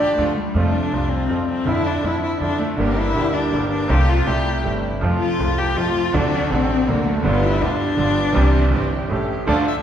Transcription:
Already playing: D4 G4
0.17 D2 D3 F3 A3 D4 F4
0.37 G3
0.54 F2 C3 F3 G3 A3 F4
0.58 F4
0.73 D4
0.92 C2 C3 G3 A3 F4
1.11 C4
1.28 F2 C3 F3 G3 A3 F4
1.49 C4
1.65 F2 D3 F3 A3 D4 E4
1.69 E4
1.87 D4
2.02 F2 D3 F3 A3 D4 E4
2.06 E4
2.23 E4
2.40 F2 D3 F3 A3 D4 E4
2.60 A3
2.76 G1 G2 D3 G3 A#3 D4 G4
2.81 G4
2.97 E4
3.13 D2 D3 G3 A#3 D4 G4
3.17 G4
3.34 D4
3.51 G1 G2 D3 G3 A#3 D4 G4
3.55 G4
3.71 D4
3.88 C2 C3 F3 A3 C4 F4 G4
4.09 F4
4.25 C2 C3 G3 A3 C4 E4 G4
4.29 E4
4.63 G1 G2 C3 G3 A3 C4 E4
5.00 F2 C3 F3 A3 C4 F4
5.04 F4
5.21 F4
5.38 C2 C3 F3 A3 C4 F4
5.58 G4
5.75 F2 C3 F3 A3 C4 F4
6.12 D2 C3 D3 F#3 A3 C4 D4 F#4
6.16 D4
6.49 A1 A2 C3 F#3 A3 C4 D4 F#4
6.86 D2 C3 D3 F#3 A3 A#3 C4 D4 F#4
6.90 D4
7.06 A3
7.23 G1 G2 D3 G3 B3 F4 G4
7.27 F4
7.43 E4
7.61 D2 D3 G3 B3 D4 F4 G4
7.96 G1 G2 D3 G3 B3 F4 G4
8.33 C2 C3 E3 G3 C4 E4 G4
8.70 G1 G2 E3 G3 C4 E4 G4
9.08 A1 A2 E3 A3 C#4 G4
9.13 G4
9.47 D2 D3 F3 A3 D4 F4 A4 D5
9.68 E5

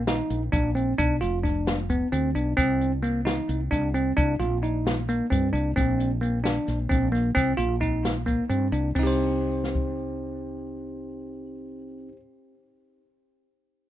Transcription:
Already playing: A#1
0.07 D#4, snare, closed hi-hat, shaker
0.30 A#1, closed hi-hat, shaker
0.52 A#1 D4, kick, snare, closed hi-hat, shaker
0.75 C4, closed hi-hat
0.98 B1 D4, kick, closed hi-hat, shaker
1.21 F1 F4, snare, closed hi-hat, shaker
1.43 D4, kick, snare, closed hi-hat, shaker
1.67 snare, closed hi-hat
1.89 B3, kick, closed hi-hat, shaker
2.12 D2 C4, closed hi-hat
2.35 B1 D4, closed hi-hat
2.57 C2 C4, kick, closed hi-hat, shaker
2.81 closed hi-hat
3.03 A#3, closed hi-hat
3.25 D#4, snare, closed hi-hat, shaker
3.49 C2, closed hi-hat, shaker
3.71 C2 D4, kick, snare, closed hi-hat, shaker
3.94 C4, closed hi-hat
4.17 C2 D4, kick, closed hi-hat, shaker
4.39 A#1 F4, closed hi-hat
4.63 D#4, closed hi-hat
4.86 snare, closed hi-hat, shaker
5.09 A#3, closed hi-hat, shaker
5.30 G2 C4, kick, closed hi-hat, shaker
5.53 C2 D4, closed hi-hat
5.76 A#1 C4, kick, closed hi-hat, shaker
6.00 closed hi-hat
6.21 A#3, closed hi-hat
6.44 D4, snare, closed hi-hat, shaker
6.67 A#1, snare, closed hi-hat, shaker
6.89 A#1 C4, kick, closed hi-hat, shaker
7.12 A#3, snare, closed hi-hat
7.35 C2 C4, kick, closed hi-hat, shaker
7.57 A#1 F4, closed hi-hat
7.81 D#4, kick, closed hi-hat, shaker
8.05 snare, closed hi-hat
8.26 A#3, kick, closed hi-hat, shaker
8.50 G2 C4, closed hi-hat, shaker
8.72 C2 D4, closed hi-hat
8.95 C2 C4 D#4, kick, crash, shaker
9.03 G4 C5
9.64 snare
9.75 kick

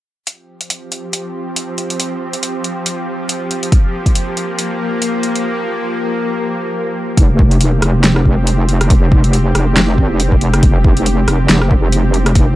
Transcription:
0.27 F3 C4 G4, closed hi-hat
0.61 closed hi-hat
0.70 closed hi-hat
0.92 closed hi-hat
1.13 closed hi-hat
1.56 closed hi-hat
1.78 closed hi-hat
1.90 closed hi-hat
2.00 closed hi-hat
2.33 closed hi-hat
2.43 closed hi-hat
2.64 closed hi-hat
2.86 closed hi-hat
3.29 closed hi-hat
3.51 closed hi-hat
3.63 closed hi-hat
3.72 A#3, kick, closed hi-hat
4.06 kick, closed hi-hat
4.15 closed hi-hat
4.37 closed hi-hat
4.59 closed hi-hat
5.02 closed hi-hat
5.23 closed hi-hat
5.36 closed hi-hat
7.17 F1 F3 C4 G4, kick, closed hi-hat
7.39 kick
7.51 closed hi-hat
7.61 closed hi-hat
7.82 F1, cross-stick, closed hi-hat
8.04 snare, closed hi-hat
8.16 cross-stick
8.25 kick
8.47 closed hi-hat
8.69 closed hi-hat
8.81 cross-stick, closed hi-hat
8.90 kick, closed hi-hat
9.12 kick
9.24 closed hi-hat
9.33 closed hi-hat
9.55 F1, cross-stick, closed hi-hat
9.77 snare, closed hi-hat
9.98 G#1, kick
10.10 F1
10.20 closed hi-hat
10.32 kick
10.41 closed hi-hat
10.54 cross-stick, closed hi-hat
10.63 kick, closed hi-hat
10.84 kick
10.97 closed hi-hat
11.06 closed hi-hat
11.28 F1, cross-stick, closed hi-hat
11.49 F1, snare, closed hi-hat
11.62 cross-stick
11.71 kick
11.92 closed hi-hat
12.14 closed hi-hat
12.26 cross-stick, closed hi-hat
12.35 kick, closed hi-hat

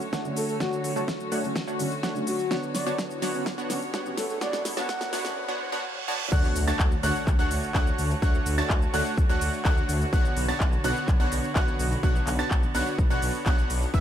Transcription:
Already playing: D3 A3 F#4 C#5, riser
0.01 shaker
0.13 A3 D4 F#4 C#5 F#5, kick, snare, shaker
0.24 D3 F#3 A3 C#4, shaker
0.37 A4, open hi-hat, shaker
0.49 A4, shaker
0.60 D3 F#3 A3 D4 F#4 C#5 F#5, kick, snare, shaker
0.73 shaker
0.84 F#4, open hi-hat, shaker
0.96 D3 F#3 A3 D4 F#4 C#5 A5, shaker
1.08 kick, snare, shaker
1.20 shaker
1.32 A3 D4 F#4 C#5 F#5, open hi-hat, shaker
1.43 D3 F#3 A3 C#4, shaker
1.56 kick, snare, shaker
1.68 A3 D4 F#4 C#5 F#5, shaker
1.79 D3 F#3 A3 C#4, open hi-hat, shaker
1.92 shaker
2.03 A3 D4 F#4 C#5 F#5, kick, snare, shaker
2.15 D3 F#3 A3 C#4, shaker
2.27 F#4, open hi-hat, shaker
2.39 shaker
2.50 D3 F#3 B3 D4 F#4 C#5 F#5, kick, snare, shaker
2.63 shaker
2.75 D5, snare, open hi-hat, shaker
2.86 D3 F#3 B3 D4 F#4 C#5 A5, shaker
2.98 kick, snare, shaker
3.11 shaker
3.22 B3 D4 F#4 C#5 F#5, snare, open hi-hat, shaker
3.34 D3 F#3 B3 C#4, shaker
3.46 kick, snare, shaker
3.58 B3 D4 F#4 C#5 F#5, shaker
3.69 D3 F#3 B3 C#4, snare, open hi-hat, shaker
3.82 shaker
3.94 B3 D4 F#4 C#5 F#5, kick, snare, shaker
4.05 D3 F#3 B3 C#4, shaker
4.17 A4, snare, open hi-hat, shaker
4.29 A4, shaker
4.41 D3 F#3 B3 D4 E4 F#4 C#5 D5 F#5, kick, snare, shaker
4.53 snare, shaker
4.65 snare, open hi-hat, shaker
4.76 D3 F#3 B3 D4 F#4 C#5 F#5 A5, snare, shaker
4.89 kick, snare, shaker
5.01 snare, shaker
5.13 B3 D4 F#4 C#5 F#5, snare, open hi-hat, shaker
5.24 D3 F#3 B3 C#4, snare, shaker
5.37 reverse cymbal
5.48 B3 D4 F#4 C#5 F#5
5.72 B3 D4 F#4 C#5 F#5
6.08 B3 D4 F#4 C#5 A5
6.32 D2 D3 A3 D4 F#4 C#5 F#5 F#6, kick, crash, impact, shaker
6.44 shaker
6.56 D2, open hi-hat, shaker
6.68 A3 D4 F#4 C#5 A5 A6, shaker
6.79 D2, kick, clap, shaker
6.92 shaker
7.03 D2 A3 D4 F#4 C#5 F#5 F#6, open hi-hat, shaker
7.15 shaker
7.27 D2, kick, clap, shaker
7.39 D2 A3 D4 F#4 C#5 F#5 F#6, shaker
7.51 D2, open hi-hat, shaker
7.63 shaker
7.75 D2 A3 D4 F#4 C#5 F#5 F#6, kick, clap, shaker
7.87 shaker
7.98 D2, open hi-hat, shaker
8.11 shaker
8.22 D2 A3 D4 F#4 C#5 F#5 F#6, kick, shaker
8.34 shaker
8.46 D2, open hi-hat, shaker
8.58 A3 D4 F#4 C#5 A5 A6, shaker
8.70 D2, kick, clap, shaker
8.82 shaker
8.94 D2 A3 D4 F#4 C#5 F#5 F#6, open hi-hat, shaker
9.06 shaker
9.18 D2, kick, shaker
9.29 D2 A3 D4 F#4 C#5 F#5 F#6, shaker
9.41 D2, open hi-hat, shaker
9.53 shaker
9.65 D2 A3 D4 F#4 C#5 F#5 F#6, kick, clap, shaker
9.77 shaker
9.89 D2, open hi-hat, shaker
10.01 shaker
10.13 B1 B3 D4 F#4 C#5 F#5 F#6, kick, shaker
10.25 shaker
10.37 B1, open hi-hat, shaker
10.48 B3 D4 F#4 C#5 A5 A6, shaker
10.60 B1, kick, clap, shaker
10.73 shaker
10.84 B1 B3 D4 F#4 C#5 F#5 F#6, open hi-hat, shaker
10.96 shaker
11.08 B1, kick, clap, shaker
11.20 B1 B3 D4 F#4 C#5 F#5 F#6, shaker
11.32 B1, open hi-hat, shaker
11.44 shaker
11.56 B1 B3 D4 F#4 C#5 F#5 F#6, kick, clap, shaker
11.68 shaker
11.79 B1, open hi-hat, shaker
11.92 shaker
12.03 B1 B3 D4 F#4 C#5 F#5 F#6, kick, shaker
12.15 shaker
12.27 B1, clap, open hi-hat, shaker
12.39 B3 D4 F#4 C#5 A5 A6, shaker
12.51 B1, kick, clap, shaker
12.63 shaker
12.75 B1 B3 D4 F#4 C#5 F#5 F#6, open hi-hat, shaker
12.87 shaker
12.98 B1, kick, shaker
13.10 B1 B3 D4 F#4 C#5 F#5 F#6, shaker
13.22 B1, open hi-hat, shaker
13.34 shaker
13.46 B1 B3 D4 F#4 C#5 F#5 F#6, kick, clap, shaker
13.58 shaker
13.70 B1, open hi-hat, shaker
13.82 shaker
13.94 E1 E3 G3 B3 E4 G4 B4 E5 E6, kick, ride, shaker

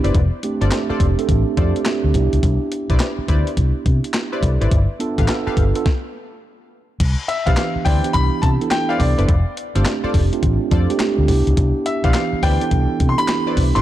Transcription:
Already playing: B3 D4 E4 G4
0.04 F#1 E4 B4 C5 D5, closed hi-hat
0.15 F1, kick, closed hi-hat
0.43 A3 C4 D4 G4, closed hi-hat
0.61 G1 F4 A4 C5 D5, closed hi-hat
0.71 A3 C4 D4 G4, snare, clap, closed hi-hat
0.89 F4 A4 C5 D5, muted fingered electric bass stroke
1.00 F1, kick, closed hi-hat
1.18 A3 C4 D4 A4, closed hi-hat
1.29 A1, kick, closed hi-hat
1.57 F2 A3 C4 D4 F4 G4 A4 C5 D5, kick, closed hi-hat
1.76 closed hi-hat
1.85 E5, snare, clap, closed hi-hat
2.04 D2
2.14 C2 B3 D4 E4 G4, kick, closed hi-hat
2.33 C#2, closed hi-hat
2.43 C2, kick, closed hi-hat
2.72 closed hi-hat
2.90 B1 E4 B4 C5 D5, kick, closed hi-hat
2.99 snare, clap, closed hi-hat
3.19 muted fingered electric bass stroke
3.28 D2 E4 B4 C5 D5, kick, closed hi-hat
3.47 closed hi-hat
3.57 C2, kick, closed hi-hat
3.86 C3, kick, closed hi-hat
4.04 closed hi-hat
4.13 snare, clap, closed hi-hat
4.32 E4 G4 B4 C5 D5
4.43 C2 A4 D5, kick, closed hi-hat
4.61 G#1 E4 B4 C5 D5 E5, closed hi-hat
4.72 G1, kick, closed hi-hat
4.99 B3 D4 F4 A4, closed hi-hat
5.18 A1 G4 A4 B4 F5, kick, closed hi-hat
5.28 B3 D4 F4 A4, snare, clap, closed hi-hat
5.47 G4 A4 B4 F5, muted fingered electric bass stroke
5.57 G1, kick, closed hi-hat
5.75 B3 D4 F4 A4, closed hi-hat
5.86 kick, snare
7.00 C2, kick, closed hi-hat, crash
7.28 E5, closed hi-hat
7.46 B1 E3 B3 D4 E4 G4 B4 C5 D5 F5, kick, closed hi-hat
7.57 snare, clap, closed hi-hat
7.76 muted fingered electric bass stroke
7.85 D2 E4 B4 C5 D5 G5, kick, open hi-hat
8.04 B3 D4 E4 G4, closed hi-hat
8.13 C2 B5, kick, closed hi-hat
8.42 C3 A5, kick, closed hi-hat
8.61 B3 D4 E4 A4, closed hi-hat
8.71 G5, snare, clap, closed hi-hat
8.89 E4 B4 C5 D5 F5
8.99 C2 D5, kick, open hi-hat
9.18 F#1 B3 D4 E4 A4 B4 C5 D5, closed hi-hat
9.29 F1, kick, closed hi-hat
9.57 closed hi-hat
9.75 G1 A3 C4 D4 F4 G4 A4 C5 D5, closed hi-hat
9.85 snare, clap, closed hi-hat
10.04 F4 A4 C5 D5, muted fingered electric bass stroke
10.14 F1, kick, open hi-hat
10.32 A3 C4 D4 F4, closed hi-hat
10.43 A1, kick, closed hi-hat
10.71 F2 F4 A4 C5 D5, kick, closed hi-hat
10.89 G#3 C4 D4 G4, closed hi-hat
10.96 A3, clap
11.00 snare, closed hi-hat
11.18 D2
11.28 B3 D4 E4 G4, kick, open hi-hat
11.47 C#2, closed hi-hat
11.57 C2, kick, closed hi-hat
11.86 E5, closed hi-hat
12.03 B1 E3 B3 D4 E4 G4 B4 C5 D5 F5, kick, closed hi-hat
12.14 snare, clap, closed hi-hat
12.33 muted fingered electric bass stroke
12.43 D2 E4 B4 C5 D5 G5, kick, open hi-hat
12.61 B3 D4 E4 A4, closed hi-hat
12.71 C2, kick, closed hi-hat
13.00 C3, kick, closed hi-hat
13.09 C6
13.18 B3 D4 E4 G4 B5, closed hi-hat
13.28 snare, clap, closed hi-hat
13.47 E4 B4 C5 D5
13.57 C2, kick, open hi-hat
13.75 G#1 B3 D4 E4 G4 B4 C5 D5 C6, closed hi-hat

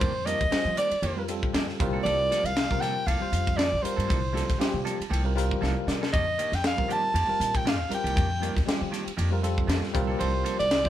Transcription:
Already playing: F4 A#4 C5
0.00 F2 D#3 A#3 D4 G4, kick, ride
0.15 muted clean electric guitar stroke
0.25 D#3 G3 A#3 C4 D4 F4 G4 A#4 D#5, hi-hat pedal, ride
0.40 D#2, muted clean electric guitar stroke, kick, ride
0.51 G3 C4 F4 C5, muted clean electric guitar stroke, muted upright bass stroke, snare, ride
0.65 F3
0.77 D#3 A#3 D4 G4 D5, hi-hat pedal, ride
0.90 muted clean electric guitar stroke, muted upright bass stroke, ride
1.02 F2 D#3 A#3 D4 G4, ride
1.16 G3 C4 F4 A#4, muted clean electric guitar stroke
1.28 G3 C4 F4 A4, muted clean electric guitar stroke, hi-hat pedal, ride
1.43 kick
1.53 F2 D#3 A#3 D4 G4, snare, ride
1.67 muted clean electric guitar stroke, snare
1.80 C2 G3 C4 F4 A#4, muted clean electric guitar stroke, kick, hi-hat pedal, ride
1.93 A#3 D4 A4
2.03 C2 F3 A#3 D4 A4 D5, ride
2.19 muted clean electric guitar stroke
2.30 F3 A#3 D4 A4, snare, hi-hat pedal, ride
2.44 C2 F5, muted clean electric guitar stroke, ride
2.56 muted clean electric guitar stroke, snare, ride
2.70 C3 G3 C4 F4 A#4, kick, snare
2.81 F3 A#3 D4 A4 G5, snare, hi-hat pedal, ride
2.96 muted clean electric guitar stroke
3.07 C2 F3 A#3 D4 A4 F5, ride
3.20 G3 C4 F4 C5, muted upright bass stroke, muted clean electric guitar stroke
3.32 F2, muted clean electric guitar stroke, hi-hat pedal, ride
3.47 kick, ride
3.57 F3 A#3 D4 A4 D5, snare, ride
3.72 A#1, muted clean electric guitar stroke
3.82 G3 C4 F4 A#4 C5, muted clean electric guitar stroke, muted upright bass stroke, hi-hat pedal, ride
3.96 G2 A#3 D4 A4, ride
4.08 C2 F3 A#3 D4 A4, kick, ride
4.21 muted clean electric guitar stroke
4.33 F3 G3 A#3 C4 D4 F4 A4
4.37 snare, hi-hat pedal, ride
4.46 A#1, muted clean electric guitar stroke, kick, ride
4.50 snare
4.58 G3 C4 F4 G4, muted clean electric guitar stroke, muted upright bass stroke, snare, ride
4.74 C3
4.84 F3 A#3 D4 A4 A5, hi-hat pedal, ride
4.99 muted clean electric guitar stroke, muted upright bass stroke, ride
5.10 C2 F3 A#3 D4 A4 G5, ride
5.24 G3 C4 F4 A#4, muted clean electric guitar stroke
5.35 G3 C4 F4 A#4 F5, muted clean electric guitar stroke, hi-hat pedal, ride
5.51 kick
5.61 C2 F3 A#3 D4 A4 F5, snare
5.76 muted clean electric guitar stroke
5.87 C3 D5, muted clean electric guitar stroke, snare, hi-hat pedal
6.02 A#3 D4 A4, snare
6.12 F2 D#3 A#3 D4 G4 D#5, kick, ride
6.27 muted clean electric guitar stroke
6.38 D#3 A#3 D4 G4, hi-hat pedal, ride
6.52 F2 G5, snare, ride
6.64 F5, muted clean electric guitar stroke, snare, ride
6.77 F3 G3 C4 F4 A#4, kick
6.88 D#3 A#3 D4 G4 A5, hi-hat pedal, ride
7.03 muted clean electric guitar stroke
7.14 F2 D#3 A#3 D4 G4, ride
7.27 G3 C4 F4 A#4, muted upright bass stroke, muted clean electric guitar stroke
7.40 A#2, muted clean electric guitar stroke, hi-hat pedal, ride
7.55 G5, kick, ride
7.65 D#3 A#3 D4 G4 F5, snare, ride
7.79 D#2, muted clean electric guitar stroke
7.89 G3 C4 F4 A#4, muted upright bass stroke, muted clean electric guitar stroke, hi-hat pedal, ride
7.94 G5
8.04 C2 A#3 D4 G4, ride
8.15 F2 D#3 A#3 D4 G4, kick, ride
8.31 muted clean electric guitar stroke
8.40 D#3 G3 A#3 C4 D4 F4 G4 A#4, hi-hat pedal, ride
8.55 D#2, muted clean electric guitar stroke, kick, snare, ride
8.66 G3 C4 F4 G4, muted clean electric guitar stroke, muted upright bass stroke, snare, ride
8.81 F3
8.91 D#3 A#3 D4 G4, snare, hi-hat pedal, ride
9.05 muted clean electric guitar stroke, muted upright bass stroke, ride
9.17 F2 D#3 A#3 D4 G4, ride
9.31 G3 C4 F4 A#4, muted clean electric guitar stroke
9.42 G3 C4 F4 A4, muted clean electric guitar stroke, hi-hat pedal, ride
9.58 kick
9.67 F2 D#3 A#3 D4 G4, snare, ride
9.82 muted clean electric guitar stroke, snare
9.93 C2 G3 C4 F4 A#4, muted clean electric guitar stroke, kick, hi-hat pedal, ride
10.07 A#3 D4 A4
10.18 C2 F3 A#3 D4 A4 C5, ride
10.33 muted clean electric guitar stroke
10.43 F3 A#3 D4 A4, hi-hat pedal, ride
10.58 C2 D5, muted clean electric guitar stroke, ride
10.70 muted clean electric guitar stroke, snare, ride
10.83 C3 G3 C4 F4 C5, kick, snare

